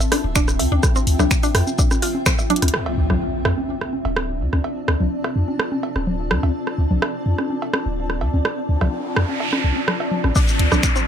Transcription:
Already playing: C4 F4 E5 G5
0.00 cowbell, shaker
0.12 D4, cross-stick, open hi-hat, high conga
0.24 D1
0.36 D4, finger snap, kick, shaker
0.48 cross-stick, shaker
0.59 D2, open hi-hat, cowbell
0.72 D2 D4, high conga
0.83 kick, cross-stick, shaker
0.96 C4, shaker
1.07 D2, open hi-hat
1.19 C2 D4, cross-stick, cowbell, low conga, shaker
1.31 finger snap, kick, shaker
1.43 D4, open hi-hat, shaker
1.54 F2, cross-stick, open hi-hat
1.67 high conga, shaker
1.78 D4, kick, cowbell, shaker
1.91 cross-stick, high conga, shaker
2.02 F4, open hi-hat
2.15 high conga
2.26 C4, finger snap, kick, cross-stick, low conga, shaker
2.39 cowbell, shaker
2.50 D4, closed hi-hat, low conga
2.56 closed hi-hat
2.62 D2, cross-stick, closed hi-hat, high conga
2.68 closed hi-hat
2.74 C4 D4, cross-stick, impact
2.86 cowbell
2.97 D2
3.03 F4
3.10 C2, cross-stick, low conga
3.45 F2, cross-stick, cowbell
3.58 D5, high conga
3.69 high conga
3.81 cross-stick
3.93 high conga
4.02 D1 A5, cowbell
4.17 cross-stick
4.40 D2
4.53 D2, cross-stick, high conga
4.64 cowbell
4.88 D2, cross-stick
5.00 C2, low conga
5.24 cross-stick, cowbell
5.36 F2
5.48 high conga
5.60 cross-stick
5.72 high conga
5.83 cowbell
5.96 D1, cross-stick, high conga
6.07 low conga
6.31 D2, cross-stick, low conga
6.43 D2, cowbell, high conga
6.67 cross-stick
6.78 D2
6.91 C2, low conga
7.02 cross-stick, cowbell
7.26 F2
7.38 cross-stick, high conga
7.50 high conga
7.62 cowbell
7.74 cross-stick, high conga
7.86 D1
8.10 cross-stick
8.21 D2, cowbell
8.34 D2, high conga
8.45 cross-stick, noise sweep
8.69 D2
8.81 C2, cross-stick, cowbell, low conga
9.16 F2, cross-stick
9.29 high conga
9.40 cowbell
9.53 cross-stick, high conga
9.64 C2
9.76 high conga
9.88 cross-stick, low conga
10.00 cowbell
10.12 low conga
10.24 A1, cross-stick, high conga
10.36 D4, kick, downlifter, shaker
10.48 shaker
10.59 D2, closed hi-hat
10.72 C2 D4, cross-stick, low conga, shaker
10.83 finger snap, kick, shaker
10.96 C4, shaker

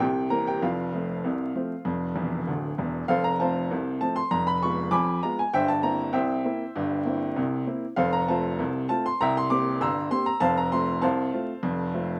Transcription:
0.00 C2 C3 G4 G5
0.30 E3 A#3 C4 A#4 A#5
0.47 G4 G5
0.62 F1 F2 F4 F5
0.93 F3 A3 C4
1.24 C2 C3
1.55 F3 A3 C4
1.85 F1 F2
2.16 E1 E2
2.47 D1 D2
2.78 E1 E2
3.08 F1 F2 A4 C5 F5
3.24 A#5
3.40 F3 A3 C4 C5 F5 A5
3.71 C2 C3
4.01 F3 A3 C4 A5
4.16 C6
4.31 F1 F2 A#5
4.47 B5
4.62 G#3 B3 F4 C#6
4.91 F2 F3 G#5 B5 D6
5.23 G#3 B3 F4 A#5
5.39 G#5
5.53 G1 G2 C5 E5 G5
5.68 A5
5.83 A#3 C4 E4 A#5
6.13 C2 C3 C5 E5 G5
6.45 A#3 C4 E4
6.76 G1 G2
7.05 A#3 C4 E4
7.36 C2 C3
7.67 A#3 C4 E4
7.96 F1 F2 A4 C5 F5
8.13 A#5
8.28 A3 C4 F4 C5 F5 A5
8.59 C2 C3
8.89 A3 C4 F4 A5
9.06 C6
9.21 C2 C3 E5 G5 A#5
9.37 C6
9.50 A#3 C4 G4 D6
9.81 G1 G2 A#5 C6 E6
10.11 A#3 C4 G4 C6
10.26 A#5
10.40 F1 F2 C5 F5 A5
10.57 A#5
10.72 A3 C4 F4 C6
11.02 C2 C3 C5 F5 A5
11.33 A3 C4 F4
11.63 F1 F2
11.94 A3 C4 F4

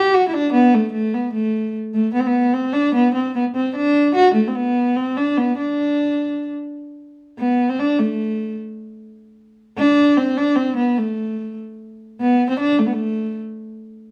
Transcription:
Already playing: G4
0.14 F#4
0.28 E4
0.34 D4
0.53 B3
0.74 A3
0.92 A3
1.14 B3
1.33 A3
1.94 A3
2.13 B3
2.20 C4
2.27 B3
2.54 C4
2.73 D4
2.95 B3
3.14 C4
3.36 B3
3.55 C4
3.76 D4
4.15 F#4
4.34 A3
4.48 C4
4.55 B3
4.96 C4
5.17 D4
5.38 B3
5.58 D4
7.39 B3
7.69 C4
7.79 D4
7.99 A3
9.78 D4
10.17 C4
10.37 D4
10.56 C4
10.77 B3
10.98 A3
12.20 B3
12.49 C4
12.60 D4
12.79 A3
12.87 B3
12.93 A3

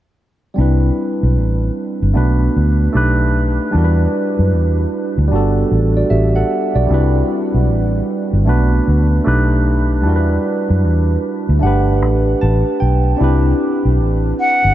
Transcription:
0.54 G3 C4 D4
0.58 C2 E4 B4
1.23 B1
1.38 A1
2.02 G1
2.14 B1 A3 B3 D4 F#4 B4
2.56 D2
2.92 B1 A3 D4 D#4 G4
2.97 B4
3.71 G3 D4 E4
3.75 E2 F#4 A#4
3.84 B4
4.39 F#2
4.54 E2
5.18 D2
5.28 G3 A3 D4
5.32 G1 F#4 A4
5.36 B3
5.72 A1
5.97 F#4 D5
6.10 A1 G4 E5
6.36 A4 F#5
6.75 B1 F#4 D5
6.86 G3 C4 D4
6.90 C2 E4 B4
7.54 B1
7.69 A1
8.33 G1
8.45 B1 A3 B3 D4 F#4 B4
8.88 D2
9.24 B1 A3 D4 D#4 G4 B4
10.01 G3 D4 E4
10.06 E2 F#4 A#4
10.16 B4
10.70 F#2
10.85 E2
11.49 D2
11.59 G1 A3 D4 F#5
11.65 G4 B4
12.02 A1
12.41 A1 A5
12.80 B1 G5
13.17 C4 D4 E4
13.21 C2 G4 B4
13.85 B1
14.00 A1
14.40 F#5
14.65 G1

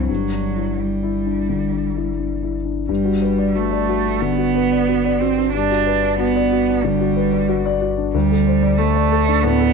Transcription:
Already playing: C2 G2 C4 E4
0.09 G1 G2 F#3
0.33 D4
0.56 E4
0.79 G3 D4
1.03 E4
1.26 D4
1.49 D3
1.72 D4
1.96 E4
2.19 D4
2.43 E4
2.65 D4
2.89 G1 G2 G3
3.05 F#4
3.22 B4
3.38 D5
3.55 A3 F#4
3.72 D5
3.89 F#4
4.05 D4
4.21 D3 B3
4.38 F#4
4.55 B4
4.72 D5
4.89 F#4
5.05 D5
5.20 C4 F#4
5.38 D4
5.53 G2 D4
5.71 F#4
5.86 B4
6.03 D5
6.19 B3 F#4
6.36 D5
6.52 F#4
6.69 D4
6.84 D3 G3
7.01 F#4
7.17 B4
7.33 D5
7.49 F#4
7.66 D5
7.81 F#4
7.98 D4
8.14 D2 G3
8.31 A4
8.47 C5
8.63 D5
8.78 A3 A4
8.96 D5
9.12 A4
9.28 D4
9.43 A2 B3
9.60 A4

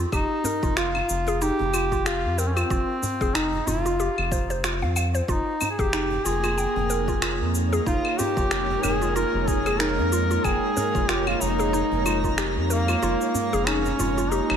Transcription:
0.00 F4
0.12 F1 D#4 G4, kick, cabasa, claves
0.44 A#4, djembe tone, djembe bass, cabasa
0.63 F1 F4, kick, cabasa
0.77 F4, finger snap, cabasa
0.95 djembe tone, claves
1.09 F1, cabasa
1.27 G#4, djembe slap, cabasa
1.42 D#4 G4, cabasa
1.59 F1, djembe tone
1.74 F4, cabasa, claves
1.92 F4, kick, cabasa
2.06 F4 G4, finger snap, cabasa
2.24 F2
2.38 C4 A#4, cabasa
2.46 C#4
2.54 C4 F4, cabasa, claves
2.70 F1 F4, kick, cabasa
3.02 djembe tone, djembe bass, cabasa
3.21 F1 G#4, kick, cabasa
3.34 D#4, finger snap, cabasa, claves
3.53 djembe tone
3.67 F1 F4, djembe bass, cabasa
3.85 F4, djembe slap, cabasa
4.00 G4, cabasa
4.18 F1, claves
4.32 C5, kick, djembe tone, cabasa
4.50 C5, djembe slap, cabasa
4.64 F4, finger snap, cabasa
4.82 F2 F5, djembe tone
4.96 F5, cabasa, claves
5.15 C5, cabasa
5.28 F1 A#3 D#4 F4 A#4, kick, cabasa
5.61 djembe tone, djembe bass, cabasa, claves
5.70 G#4
5.79 F1 G4 G#4, kick, cabasa
5.93 D#4, finger snap, cabasa
6.11 djembe tone
6.24 F1 D#4 F4 G#4, cabasa
6.36 C#5
6.43 F4, djembe slap, cabasa, claves
6.58 G5, cabasa
6.76 F1, djembe tone
6.90 A#4, cabasa
7.08 F4, kick, cabasa
7.21 G#3 F4, finger snap, cabasa, claves
7.40 F2
7.55 cabasa
7.73 G#4, cabasa
7.86 F1 D#4 F4, kick, cabasa
8.05 claves
8.19 F4 G4, djembe tone, djembe bass, cabasa
8.37 F1 F4, kick, cabasa
8.51 G4, finger snap, cabasa
8.70 djembe tone
8.83 F1 G#4 A#4, djembe bass, cabasa, claves
9.02 F4, djembe slap, cabasa
9.16 F4 A#4, cabasa
9.34 F1
9.48 G#4, kick, cabasa
9.66 G#4, djembe slap, cabasa, claves
9.80 D#4 A#4, finger snap, cabasa
9.98 F2, djembe tone
10.12 F4, cabasa
10.31 F4, cabasa
10.44 F1 G#4 G5, kick, cabasa, claves
10.77 A#4, djembe tone, djembe bass, cabasa
10.95 F1 F4, kick, cabasa
11.09 F4 G4, finger snap, cabasa
11.27 F4, djembe tone, claves
11.41 F1 D#4, cabasa
11.59 G#4, djembe slap, cabasa
11.73 D#4, cabasa
11.92 F1, djembe tone
12.06 F4, cabasa, claves
12.24 F4, kick, cabasa
12.38 G4, finger snap, cabasa
12.56 F2
12.70 A#3 A#4, cabasa
12.88 F4, cabasa, claves
13.03 F1 F4, cabasa
13.21 cabasa
13.34 djembe tone, djembe bass, cabasa
13.53 F1 G#4, cabasa
13.67 C#4 D#4, finger snap, cabasa, claves
13.84 djembe tone, cabasa
13.99 F1 F4, djembe bass, cabasa
14.18 F4, djembe slap, cabasa
14.31 D#4 G4, cabasa
14.50 F1, finger snap, claves

